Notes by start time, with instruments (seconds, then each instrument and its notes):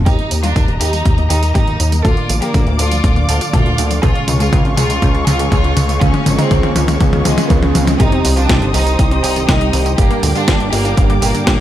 0.06 analog synth bass D#2, synth arpeggio sound A#2, string section A#3 G4 D#5 A#5, violin section D#4 G4, kick, closed hi-hat, mid tom, tambourine, riser
0.19 synth arpeggio sound A#3, closed hi-hat
0.31 analog synth bass D#2, synth arpeggio sound D#3, closed hi-hat, tambourine
0.43 analog polysynth D#3, synth arpeggio sound G3, violin section D4 F4, closed hi-hat, tambourine
0.56 analog synth bass D#2, synth arpeggio sound A#2, kick, closed hi-hat, mid tom, tambourine
0.68 analog synth bass D#1, synth arpeggio sound A#2, closed hi-hat
0.81 analog synth bass D#2, synth arpeggio sound D#4, violin section D#4 G4, closed hi-hat, tambourine
0.93 synth arpeggio sound G3, closed hi-hat, tambourine
1.05 analog synth bass D#2, synth arpeggio sound A#2, analog polysynth D#3 A#3 A#4, kick, closed hi-hat, mid tom, tambourine
1.18 synth arpeggio sound A#3, closed hi-hat
1.30 analog synth bass D#2, synth arpeggio sound D#3, violin section D#4 G4, closed hi-hat, tambourine
1.43 analog polysynth D#3 A#3 G4 A#4, synth arpeggio sound G3, closed hi-hat, tambourine
1.55 analog synth bass D#2, synth arpeggio sound A#2, violin section D#4 G4, kick, closed hi-hat, mid tom, tambourine
1.67 synth arpeggio sound A#2, analog polysynth D#3 A#3 A#4, closed hi-hat
1.80 analog synth bass D#2, synth arpeggio sound D#4, closed hi-hat, tambourine
1.92 synth arpeggio sound G3, closed hi-hat, tambourine
2.05 analog synth bass D2, synth arpeggio sound A#2, analog polysynth D3 A#3 D4 A#4, violin section F4 A4, string section D5 F5 D6, kick, closed hi-hat, mid tom, tambourine
2.17 synth arpeggio sound A#3, closed hi-hat
2.29 analog synth bass A1, synth arpeggio sound D3, closed hi-hat, tambourine
2.42 analog polysynth D3 A#3 D4 F4 A#4, synth arpeggio sound F3, violin section A#3 G4, closed hi-hat, tambourine
2.54 analog synth bass D2, synth arpeggio sound A#2, kick, closed hi-hat, mid tom, tambourine
2.67 analog synth bass D2, synth arpeggio sound A#2, closed hi-hat
2.79 analog synth bass D2, analog polysynth D3, synth arpeggio sound D4, violin section F4 A4, closed hi-hat, tambourine
2.91 synth arpeggio sound F3, closed hi-hat, tambourine
3.04 analog synth bass D2, synth arpeggio sound A#2, analog polysynth D3 A#3 D4 A#4, kick, closed hi-hat, mid tom, tambourine
3.16 synth arpeggio sound A#3, closed hi-hat
3.29 analog synth bass D2, synth arpeggio sound D3, violin section F4 A4, closed hi-hat, tambourine
3.41 analog polysynth D3 A#3 D4, synth arpeggio sound F3, closed hi-hat, tambourine
3.53 analog synth bass D2, synth arpeggio sound A#2, violin section F4 A4, kick, closed hi-hat, mid tom, tambourine
3.66 synth arpeggio sound A#2, analog polysynth D3, closed hi-hat
3.78 analog synth bass D2, synth arpeggio sound D4, closed hi-hat, tambourine
3.91 synth arpeggio sound F3, closed hi-hat, tambourine
4.03 analog synth bass C#2, analog polysynth C#3 G#3 F4 G#4, synth arpeggio sound C#3, violin section F4 G#4, string section G#4 C#5 C#6, kick, closed hi-hat, mid tom, tambourine
4.15 synth arpeggio sound C#4, closed hi-hat
4.28 analog synth bass C#2, synth arpeggio sound F3, closed hi-hat, mid tom, tambourine
4.40 analog polysynth C#3 G#3, synth arpeggio sound G#3, violin section F4 G#4, closed hi-hat, tambourine
4.53 analog synth bass C#2, synth arpeggio sound C#3, kick, closed hi-hat, mid tom, tambourine
4.65 analog synth bass G#1, synth arpeggio sound C#3, closed hi-hat
4.77 analog synth bass C#2, analog polysynth C#3 G#3, synth arpeggio sound F4, violin section F4 G#4, closed hi-hat, mid tom, tambourine
4.90 synth arpeggio sound G#3, closed hi-hat, tambourine
5.02 analog synth bass C#2, analog polysynth C#3 G#3 C#4 F4 G#4, synth arpeggio sound C#3, kick, closed hi-hat, mid tom, tambourine
5.15 synth arpeggio sound C#4, closed hi-hat
5.27 analog synth bass C#2, synth arpeggio sound F3, violin section F4 G#4, closed hi-hat, mid tom, tambourine
5.39 analog polysynth C#3 G#3 C#4 F4 G#4, synth arpeggio sound G#3, closed hi-hat, tambourine
5.52 analog synth bass C#2, synth arpeggio sound C#3, violin section F4 G#4, kick, closed hi-hat, mid tom, tambourine
5.64 analog polysynth C#3 C#4 F4, synth arpeggio sound C#3, closed hi-hat
5.77 analog synth bass C#2, synth arpeggio sound F4, closed hi-hat, mid tom, tambourine
5.89 synth arpeggio sound G#3, closed hi-hat, tambourine
6.01 analog synth bass C#2, analog polysynth C#3 G#3 C#4 F4 G#4, synth arpeggio sound C#3, violin section C#4 F4, kick, closed hi-hat, mid tom, tambourine
6.14 synth arpeggio sound C#4, closed hi-hat, mid tom
6.26 analog synth bass G#1, synth arpeggio sound F3, closed hi-hat, mid tom, tambourine
6.38 analog polysynth C#3 G#3 C#4 F4 G#4, synth arpeggio sound G#3, violin section C4 D#4, closed hi-hat, mid tom, tambourine
6.51 analog synth bass C#2, synth arpeggio sound C#3, kick, closed hi-hat, mid tom, tambourine
6.63 analog synth bass C#2, synth arpeggio sound C#3, closed hi-hat, mid tom
6.76 analog synth bass C#2, analog polysynth C#3 G#3 C#4 F4 G#4, violin section C#4, synth arpeggio sound F4, closed hi-hat, mid tom, tambourine
6.88 synth arpeggio sound G#3, closed hi-hat, mid tom, tambourine
7.01 analog synth bass C#2, synth arpeggio sound C#3, analog polysynth C#3 G#3 C#4 F4 G#4, kick, closed hi-hat, mid tom, tambourine
7.13 synth arpeggio sound C#4, closed hi-hat, mid tom
7.25 analog synth bass C#2, synth arpeggio sound F3, violin section G#3 C4, closed hi-hat, mid tom, tambourine
7.38 analog polysynth C#3 G#3 C#4 F4 G#4, synth arpeggio sound G#3, closed hi-hat, mid tom, tambourine
7.50 analog synth bass C#2, synth arpeggio sound C#3, violin section A#3, kick, closed hi-hat, mid tom, tambourine
7.62 synth arpeggio sound C#3, analog polysynth C#3 G#3 C#4 F4 G#4, closed hi-hat, mid tom
7.75 analog synth bass C#2, synth arpeggio sound F4, closed hi-hat, mid tom, tambourine
7.87 synth arpeggio sound G#3, closed hi-hat, mid tom, tambourine
8.00 analog synth bass C2, analog polysynth C3 G3 C4 D#4 G4, synth arpeggio sound C3, violin section D#4 G4, string section C5 D#5 G5 D#6, kick, closed hi-hat, tambourine, sub drop
8.12 synth arpeggio sound C4, closed hi-hat
8.25 analog synth bass C2, synth arpeggio sound C3, open hi-hat, tambourine
8.37 analog polysynth C3 G3 C4 D#4 G4, synth arpeggio sound D#3, violin section D4 F4, closed hi-hat, tambourine
8.49 analog synth bass C2, synth arpeggio sound C3, kick, snare, closed hi-hat, tambourine
8.62 analog synth bass G1, synth arpeggio sound D#4, closed hi-hat
8.74 analog synth bass C2, analog polysynth C3 G3 C4 D#4, synth arpeggio sound D#3, violin section D#4 G4, open hi-hat, tambourine
8.87 synth arpeggio sound D#4, closed hi-hat, tambourine
8.99 analog synth bass C2, analog polysynth C3 G3 C4 D#4 G4, synth arpeggio sound C3, kick, closed hi-hat, tambourine
9.11 synth arpeggio sound C4, closed hi-hat
9.24 analog synth bass C2, synth arpeggio sound C3, violin section D#4 G4, open hi-hat, tambourine
9.36 analog polysynth C3 G3 C4 D#4 G4, synth arpeggio sound D#3, closed hi-hat, tambourine
9.48 analog synth bass C2, synth arpeggio sound C3, violin section D#4 G4, kick, snare, closed hi-hat, tambourine
9.61 analog polysynth C3 G3 C4 D#4 G4, synth arpeggio sound D#4, closed hi-hat
9.73 analog synth bass C2, synth arpeggio sound D#3, open hi-hat, tambourine
9.86 synth arpeggio sound D#4, closed hi-hat, tambourine
9.98 analog synth bass G1, analog polysynth G2 G3 A#3 D4 G4, synth arpeggio sound A#2, violin section A#3 G4, string section A#4 D5 D6, kick, closed hi-hat, tambourine
10.11 synth arpeggio sound A#3, closed hi-hat
10.23 analog synth bass D2, synth arpeggio sound A#2, open hi-hat, tambourine
10.35 analog polysynth G2 G3 A#3 D4 G4, synth arpeggio sound D3, violin section D4 F4, closed hi-hat, tambourine
10.48 analog synth bass G1, synth arpeggio sound A#2, kick, snare, closed hi-hat, tambourine
10.60 analog synth bass G1, synth arpeggio sound D4, closed hi-hat
10.72 analog synth bass G1, analog polysynth G2 G3 A#3 G4, synth arpeggio sound D3, violin section A#3 G4, open hi-hat, tambourine
10.85 synth arpeggio sound D4, closed hi-hat, tambourine
10.97 analog synth bass G1, analog polysynth G2 G3 A#3 D4 G4, synth arpeggio sound A#2, kick, closed hi-hat, tambourine
11.10 synth arpeggio sound A#3, closed hi-hat
11.22 analog synth bass G1, synth arpeggio sound A#2, violin section A#3 G4, open hi-hat, tambourine
11.34 analog polysynth G2 G3 A#3 D4 G4, synth arpeggio sound D3, closed hi-hat, tambourine
11.47 analog synth bass G1, synth arpeggio sound A#2, violin section A#3 G4, kick, snare, closed hi-hat, tambourine